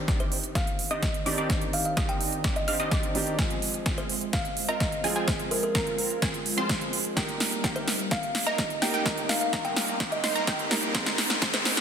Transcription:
Already playing: D#3 C4 D4 G4 C5
0.08 C4 D4 D#4 G4 D5 D6, kick, snare, closed hi-hat
0.20 C5, closed hi-hat
0.32 open hi-hat
0.44 closed hi-hat
0.55 F5, kick, snare, closed hi-hat
0.67 closed hi-hat
0.79 open hi-hat
0.91 C4 D4 D#4 G4 D#5 D#6, closed hi-hat
1.03 kick, snare, closed hi-hat
1.14 closed hi-hat
1.26 D#3 C4 D4 D#4 G4 D5 D6, open hi-hat
1.38 C4 D4 D#4 G4 D5 D6, closed hi-hat
1.49 D#3 C4, kick, snare, closed hi-hat
1.62 closed hi-hat
1.73 F5, open hi-hat
1.85 F5, closed hi-hat
1.97 C4 D4 D#4 G4 D#5 D#6, kick, snare, closed hi-hat
2.09 G5, closed hi-hat
2.21 open hi-hat
2.32 closed hi-hat
2.44 C4 D4 D#4 G4 D5 D6, kick, snare, closed hi-hat
2.56 D#5, closed hi-hat
2.68 C4 D4 D#4 G4 D#5 F5 F6, open hi-hat
2.80 C4 D4 D#4 G4 D#5 D#6, closed hi-hat
2.91 C4 D4 D#4 G4 D5 D6, kick, snare, closed hi-hat
3.03 closed hi-hat
3.15 D#3 C4 D4 G4, open hi-hat
3.27 closed hi-hat
3.38 F3 G#3 C4 F4 G#4 G#5, kick, snare, closed hi-hat
3.50 closed hi-hat
3.62 open hi-hat
3.74 closed hi-hat
3.86 C4 F4 G#4 G#5, kick, snare, closed hi-hat
3.98 C5, closed hi-hat
4.09 open hi-hat
4.21 closed hi-hat
4.33 F5, kick, snare, closed hi-hat
4.45 closed hi-hat
4.57 open hi-hat
4.69 C4 F4 A#4 D#5 A#5, closed hi-hat
4.80 kick, snare, closed hi-hat
4.92 closed hi-hat
5.04 F3 G#3 C4 F4 G#4 G#5, open hi-hat
5.16 C4 F4 G#4 G#5, closed hi-hat
5.28 C4 G#4 C5, kick, snare, closed hi-hat
5.39 closed hi-hat
5.51 A#4, open hi-hat
5.63 A#4, closed hi-hat
5.75 C4 F4 A#4 A#5, kick, snare, closed hi-hat
5.87 closed hi-hat
5.98 open hi-hat
6.10 closed hi-hat
6.22 C4 F4 G#4 G#5, kick, snare, closed hi-hat
6.34 closed hi-hat
6.46 open hi-hat
6.56 F3 G#3 C4 F4 G#4 C5 C6, closed hi-hat
6.69 kick, snare, closed hi-hat
6.81 closed hi-hat
6.93 open hi-hat
7.05 closed hi-hat
7.15 G3 A#3 D#4 G4 A#4 G5, kick, snare, closed hi-hat, riser
7.29 closed hi-hat
7.40 snare, open hi-hat
7.52 closed hi-hat
7.64 A#3 D#4 G4 G5, kick, snare, closed hi-hat
7.76 C5, closed hi-hat
7.88 snare, open hi-hat
7.99 closed hi-hat
8.11 F5, kick, snare, closed hi-hat
8.23 closed hi-hat
8.35 snare, open hi-hat
8.47 A#3 D#4 A#4 D#5 A#5, closed hi-hat
8.58 kick, snare, closed hi-hat
8.70 closed hi-hat
8.81 G3 A#3 D#4 G4 A#4 G5, snare, open hi-hat
8.94 A#3 D#4 G4 G5, closed hi-hat
9.05 G3 A#3 D#4 A#4, kick, snare, closed hi-hat
9.17 closed hi-hat
9.29 F5, snare, open hi-hat
9.41 F5, closed hi-hat
9.53 A#3 D#4 A#4 A#5, kick, snare, closed hi-hat
9.65 G5, closed hi-hat
9.77 snare, open hi-hat
9.88 closed hi-hat
10.00 A#3 D#4 G4 G5, kick, snare, closed hi-hat
10.12 D#5, closed hi-hat
10.24 A#3 D#4 C5 D#5 C6, snare, open hi-hat
10.36 A#3 D#4 A#4 A#5, closed hi-hat
10.47 G4 G5, kick, snare, closed hi-hat
10.59 closed hi-hat
10.71 G3 A#3 D#4 A#4, snare, open hi-hat
10.83 closed hi-hat
10.94 G#2 G#3 A#3 C4 D#4 G#4 A#4 C5 C6, kick, snare, closed hi-hat
11.06 snare, closed hi-hat
11.18 snare, open hi-hat
11.30 snare, closed hi-hat
11.42 A#3 C4 D#4 G#4 C5 C6, kick, snare, closed hi-hat
11.54 C5, snare, closed hi-hat
11.65 snare, open hi-hat
11.77 snare, closed hi-hat

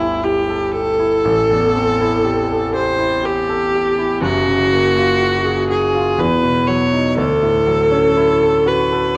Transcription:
Already playing: G1 D2 B3 E4 G4 A4
0.00 E4
0.23 G4
0.49 A4
0.71 G4 A4
0.99 E4
1.25 A1
1.50 E2
1.76 C4
2.01 E4
2.25 G4
2.50 A4
2.74 G4 C5
2.99 E4
3.23 G4
3.49 A4
3.75 G4
3.98 E4
4.21 F#1 F#2 F#4
4.47 C#3
4.72 A#3
4.97 F4
5.22 F#4
5.45 G#4
5.70 F#4 G#4
5.95 F4
6.18 E2 B4
6.43 B2
6.67 F#3 C#5
6.93 D#4
7.18 D2 A4
7.43 A2
7.67 F#3
7.91 C#4
8.17 E4
8.42 A4
8.66 F#4 B4
8.92 A4

